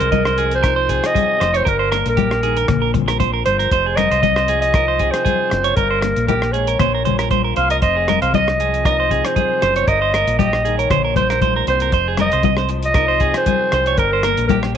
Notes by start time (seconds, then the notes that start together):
Already playing: F2 G#3 F4 A#4
0.00 C2 C5, closed hi-hat
0.12 D#5, kick, closed hi-hat, high conga
0.25 C5, cross-stick
0.38 F3 G#4, closed hi-hat
0.51 C5, closed hi-hat
0.63 D#4 A#4, kick, cross-stick, closed hi-hat, muted conga
0.76 C5
0.89 C3 G#4, kick, closed hi-hat
1.04 D#5, cross-stick, closed hi-hat
1.14 G#4, kick, closed hi-hat, high conga
1.40 F1 F2 C5, cross-stick, closed hi-hat
1.54 C5 C#5, closed hi-hat
1.65 G1 G2 A#4, kick, closed hi-hat, muted conga
1.79 C5
1.92 A#3 A#4, cross-stick, closed hi-hat, muted conga
2.06 A#1 A#4, closed hi-hat
2.17 G4, kick, closed hi-hat, high conga
2.31 cross-stick
2.43 D#3 G#4, closed hi-hat
2.57 A#4, closed hi-hat
2.67 A#1 A#2, muted clean electric guitar stroke, kick, cross-stick, closed hi-hat, muted conga, low conga
2.82 A#4
2.94 C4, muted clean electric guitar stroke, kick, closed hi-hat, high conga, low conga
3.08 A#4, cross-stick, closed hi-hat
3.20 C5, kick, closed hi-hat, high conga
3.33 A#4
3.45 G1 F3 C5, closed hi-hat, muted conga
3.59 A#4, closed hi-hat
3.71 F1 F2 C5, kick, closed hi-hat, muted conga
3.86 G#4
3.96 G#3 A#4 D#5, cross-stick, closed hi-hat, muted conga, high conga
4.11 C2 C5, closed hi-hat
4.23 D#5, kick, closed hi-hat, high conga
4.36 C5, cross-stick
4.48 F3 G#4, closed hi-hat
4.61 D#5, closed hi-hat
4.74 D#4 A#4, kick, cross-stick, closed hi-hat, muted conga
4.88 C5
4.99 C3 G#4, kick, closed hi-hat
5.11 C5, cross-stick, closed hi-hat
5.25 G#4, kick, closed hi-hat, high conga
5.50 F#1 F2, muted clean electric guitar stroke, cross-stick, closed hi-hat, muted conga
5.64 C#5, closed hi-hat
5.76 G1 G2 A#4, kick, closed hi-hat, muted conga
5.91 C5
6.02 A#3, muted clean electric guitar stroke, cross-stick, closed hi-hat, muted conga
6.16 A#1, closed hi-hat
6.27 G4 A#4, kick, closed hi-hat, high conga
6.42 cross-stick
6.52 G#2 G#4 C#5, closed hi-hat
6.67 A#4, closed hi-hat
6.79 A#1 A#2 C5, kick, cross-stick, closed hi-hat, muted conga, low conga
6.95 A#4
7.05 A#3 C5, closed hi-hat, high conga, low conga
7.19 A#4, cross-stick, closed hi-hat
7.31 C5, kick, closed hi-hat, high conga
7.44 A#4
7.56 C2 F3 C5 F5, closed hi-hat, muted conga
7.70 A#4 D#5, closed hi-hat
7.82 F1 F2 C5 D#5, kick, closed hi-hat, muted conga
7.96 G#4
8.08 G#3 A#4, cross-stick, closed hi-hat, muted conga, high conga
8.22 C2 C5 F5, closed hi-hat
8.34 D#5, kick, closed hi-hat, high conga
8.48 cross-stick
8.60 F3 G#4, closed hi-hat
8.74 closed hi-hat
8.85 D#4 A#4 D#5, kick, cross-stick, closed hi-hat, muted conga
9.00 C5
9.11 C3 G#4, kick, closed hi-hat
9.25 C5, cross-stick, closed hi-hat
9.36 G#4, kick, closed hi-hat, high conga
9.62 F#1 C5, cross-stick, closed hi-hat, muted conga
9.76 C#5, closed hi-hat
9.87 G1 G2 A#4 D#5, kick, closed hi-hat, muted conga
10.02 C5
10.14 G#3 A#4, cross-stick, closed hi-hat
10.27 A#1, muted nylon-string guitar stroke, closed hi-hat
10.39 G4 D#5, kick, closed hi-hat, high conga
10.53 cross-stick
10.65 D#3 G#4, closed hi-hat
10.78 A#4 C#5, closed hi-hat
10.90 A#1 A#2 C5, kick, cross-stick, closed hi-hat, muted conga, low conga
11.05 A#4
11.16 A#3 C5, kick, closed hi-hat, high conga, low conga
11.30 A#4, cross-stick, closed hi-hat
11.41 G#2 C5, kick, closed hi-hat, high conga
11.56 A#4
11.67 C2 G2 C5, closed hi-hat, muted conga
11.80 A#4, closed hi-hat
11.92 F1 F2 C5, kick, closed hi-hat, muted conga
12.08 G#4
12.17 G#3 A#4, cross-stick, closed hi-hat, muted conga, high conga
12.21 D#5
12.32 C2 C5, closed hi-hat
12.43 D#5, kick, closed hi-hat, high conga
12.57 C5, cross-stick
12.69 F3, muted clean electric guitar stroke, closed hi-hat
12.83 D#5, closed hi-hat
12.94 D#4 A#4, kick, cross-stick, closed hi-hat, muted conga
13.08 C5
13.20 C3 G#4, kick, closed hi-hat
13.34 C5, cross-stick, closed hi-hat
13.46 G#4, kick, closed hi-hat, high conga
13.72 C2 C5, cross-stick, closed hi-hat, muted conga
13.86 C#5, closed hi-hat
13.97 G1 G2 A#4, kick, closed hi-hat, muted conga
14.13 C5
14.23 A#3 A#4, cross-stick, closed hi-hat, muted conga
14.37 A#1, closed hi-hat
14.48 G2 G4 A#4, kick, closed hi-hat, high conga
14.63 cross-stick